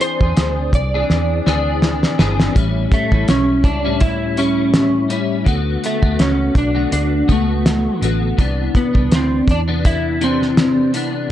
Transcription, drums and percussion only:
0.01 closed hi-hat medium
0.21 kick medium
0.37 snare loud
0.37 closed hi-hat medium
0.73 kick loud
0.73 closed hi-hat medium
1.10 snare medium
1.46 snare medium
1.82 snare medium
2.03 snare medium
2.19 snare loud
2.40 snare medium
2.56 kick loud
2.56 closed hi-hat medium
2.92 kick loud
2.92 closed hi-hat medium
3.12 kick medium
3.28 snare loud
3.28 closed hi-hat medium
3.64 kick medium
3.64 closed hi-hat medium
4.00 kick loud
4.00 closed hi-hat medium
4.37 closed hi-hat medium
4.74 snare loud
4.74 closed hi-hat medium
5.10 closed hi-hat medium
5.46 kick loud
5.46 closed hi-hat medium
5.84 closed hi-hat medium
6.03 kick loud
6.19 snare loud
6.19 closed hi-hat medium
6.55 kick loud
6.55 closed hi-hat medium
6.92 closed hi-hat medium
7.29 kick loud
7.29 closed hi-hat medium
7.66 snare loud
7.66 closed hi-hat medium
8.02 closed hi-hat medium
8.39 kick loud
8.39 closed hi-hat medium
8.75 kick loud
8.75 closed hi-hat medium
8.95 kick medium
9.12 snare loud
9.12 closed hi-hat medium
9.48 kick loud
9.48 closed hi-hat medium
9.85 kick loud
9.85 closed hi-hat medium
10.21 closed hi-hat medium
10.42 snare soft
10.57 snare loud
10.57 closed hi-hat medium
10.94 closed hi-hat medium

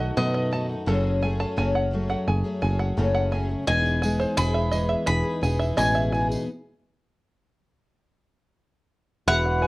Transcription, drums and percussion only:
3.69 tambourine soft
3.86 tambourine soft
4.03 tambourine medium
4.21 tambourine soft
4.37 tambourine medium
4.73 tambourine medium
5.44 tambourine medium
5.62 tambourine soft
5.79 tambourine medium
5.96 tambourine soft
6.14 tambourine soft
6.31 tambourine medium

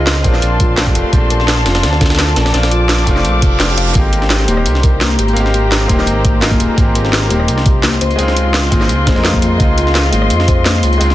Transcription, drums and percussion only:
0.07 snare loud
0.07 closed hi-hat medium
0.16 cross-stick soft
0.16 snare soft
0.24 kick medium
0.24 closed hi-hat medium
0.34 cross-stick soft
0.34 snare soft
0.42 closed hi-hat medium
0.60 kick loud
0.60 closed hi-hat medium
0.78 snare loud
0.78 closed hi-hat medium
0.87 kick medium
0.87 closed hi-hat soft
0.95 closed hi-hat medium
1.13 kick loud
1.13 closed hi-hat medium
1.30 closed hi-hat medium
1.40 snare soft
1.48 snare loud
1.48 closed hi-hat medium
1.57 cross-stick soft
1.57 snare medium
1.66 snare loud
1.66 closed hi-hat loud
1.66 closed hi-hat medium
1.75 cross-stick soft
1.75 snare loud
1.75 closed hi-hat medium
1.83 snare loud
1.83 closed hi-hat medium
1.93 snare medium
2.01 kick loud
2.01 snare medium
2.01 closed hi-hat loud
2.01 closed hi-hat medium
2.06 snare medium
2.06 closed hi-hat medium
2.10 snare medium
2.10 closed hi-hat medium
2.15 snare medium
2.15 closed hi-hat medium
2.19 snare loud
2.19 closed hi-hat medium
2.19 closed hi-hat loud
2.28 closed hi-hat soft
2.36 snare loud
2.36 closed hi-hat loud
2.36 closed hi-hat medium
2.45 cross-stick soft
2.45 snare loud
2.45 closed hi-hat medium
2.54 snare loud
2.54 closed hi-hat medium
2.63 snare loud
2.63 closed hi-hat medium
2.71 closed hi-hat loud
2.71 closed hi-hat medium
2.89 snare loud
2.89 closed hi-hat medium
2.98 cross-stick soft
2.98 snare soft
3.07 kick medium
3.07 closed hi-hat medium
3.07 closed hi-hat loud
3.16 cross-stick soft
3.16 snare soft
3.25 closed hi-hat medium
3.42 kick loud
3.42 closed hi-hat loud
3.42 closed hi-hat medium
3.60 snare loud
3.60 closed hi-hat medium
3.69 closed hi-hat soft
3.78 closed hi-hat loud
3.78 closed hi-hat medium
3.95 kick loud
3.95 closed hi-hat medium
4.13 closed hi-hat loud
4.13 closed hi-hat medium
4.22 snare soft
4.30 snare loud
4.30 closed hi-hat medium
4.40 cross-stick soft
4.40 snare medium
4.48 closed hi-hat loud
4.48 closed hi-hat medium
4.48 high conga medium
4.57 cross-stick soft
4.66 closed hi-hat medium
4.75 snare medium
4.83 kick loud
4.83 closed hi-hat loud
4.83 closed hi-hat medium
5.01 snare loud
5.01 closed hi-hat medium
5.01 high conga medium
5.10 closed hi-hat soft
5.19 closed hi-hat loud
5.19 closed hi-hat medium
5.28 closed hi-hat soft
5.37 closed hi-hat medium
5.46 snare soft
5.54 closed hi-hat medium
5.72 snare loud
5.72 closed hi-hat medium
5.81 cross-stick soft
5.81 snare soft
5.89 kick medium
5.89 closed hi-hat medium
5.89 high conga medium
5.99 cross-stick soft
5.99 snare soft
6.07 closed hi-hat medium
6.25 kick loud
6.25 closed hi-hat loud
6.25 closed hi-hat medium
6.25 high conga medium
6.42 snare loud
6.42 closed hi-hat medium
6.51 kick medium
6.51 closed hi-hat soft
6.51 high conga loud
6.60 closed hi-hat loud
6.60 closed hi-hat medium
6.60 high conga loud
6.78 kick loud
6.78 closed hi-hat medium
6.95 closed hi-hat medium
7.05 snare soft
7.13 snare loud
7.13 closed hi-hat medium
7.22 cross-stick soft
7.22 snare medium
7.30 closed hi-hat medium
7.30 high conga medium
7.40 cross-stick soft
7.48 closed hi-hat medium
7.58 snare medium
7.66 kick loud
7.66 closed hi-hat medium
7.83 snare loud
7.83 closed hi-hat medium
7.83 high conga medium
7.93 closed hi-hat soft
8.01 closed hi-hat medium
8.11 closed hi-hat soft
8.19 closed hi-hat medium
8.28 snare soft
8.37 closed hi-hat medium
8.54 snare loud
8.54 closed hi-hat medium
8.63 cross-stick soft
8.63 snare soft
8.72 kick medium
8.72 closed hi-hat medium
8.72 high conga medium
8.81 cross-stick soft
8.81 snare soft
8.89 closed hi-hat medium
9.06 kick loud
9.06 snare loud
9.06 closed hi-hat medium
9.06 high conga medium
9.16 snare soft
9.25 snare loud
9.25 closed hi-hat medium
9.33 kick medium
9.33 high conga loud
9.42 closed hi-hat medium
9.42 high conga loud
9.60 kick loud
9.60 closed hi-hat medium
9.78 closed hi-hat medium
9.87 snare soft
9.95 snare loud
9.95 closed hi-hat medium
10.04 cross-stick soft
10.04 snare soft
10.13 closed hi-hat medium
10.13 high conga medium
10.22 cross-stick soft
10.30 closed hi-hat medium
10.40 snare medium
10.48 kick loud
10.48 closed hi-hat medium
10.66 snare loud
10.66 closed hi-hat medium
10.66 high conga medium
10.75 closed hi-hat soft
10.83 closed hi-hat medium
10.93 closed hi-hat soft
11.01 closed hi-hat medium
11.10 snare soft

